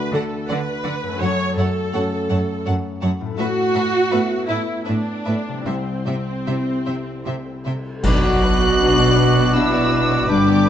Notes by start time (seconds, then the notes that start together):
Already playing: D2 D3 A3 D4 F#4 B4
0.13 D3 A4 D5 F#5
0.49 D3 B4 D5 F#5
0.84 D3 D5 F#5
1.03 F#2
1.08 A3
1.12 C#4
1.17 F#2 F#4 C#5
1.21 F#2 F#5 A5
1.57 F#2 A4 C#5 F#5 A5
1.93 F#2 A3 C#4 F#4 C#5 F#5 A5
2.29 F#2 C#5 F#5 A5
2.65 F#2 C#5 F#5 A5
3.00 F#2 C#5 F#5 A5
3.21 A2
3.25 A3
3.30 B3
3.34 A2 E4 A5
3.39 A2 F#4 B4 E5
3.74 A2 B4 E5 A5
4.11 A2 A3 B3 E4 B4 E5 A5
4.48 A2 E4 B4 E5 A5
4.85 A2 D4 B4 E5 A5
5.25 A2 B4 E5 A5
5.48 C3
5.53 G3
5.58 C4
5.62 E4 C5 E5 G5
5.66 C2 C3 C4
6.06 C3 C5 E5 G5
6.46 C3 G3 C4 E4 C5 E5 G5
6.86 C3 C5 E5 G5
7.25 C3 C5 E5 G5
7.65 C3 C5 E5 G5
8.03 B1 B2 F#3 D4 F#4 B4 D6 F#6, concert bass drum, crash
8.24 B3 F#4 D5
8.30 F#3
8.42 F#3 D4 B4
8.55 B3
8.61 B3 F#4 D5
8.79 F#3 B3 D4 F#4 B4
8.97 B3 F#4 D5
9.06 F#4
9.15 F#3 D4 B4
9.30 B4
9.35 B3 F#4 D5
9.53 F#3 B3 D4 E4 F#4 B4 D5 E6
9.71 B3 F#4 D5
9.80 B4
9.90 F#3 D4 B4
10.05 F#4 D5
10.11 B3
10.27 G1 G2 G3 D4 G4 B4 D6
10.47 B3 G4 D5
10.54 D3
10.65 G3 D4 B4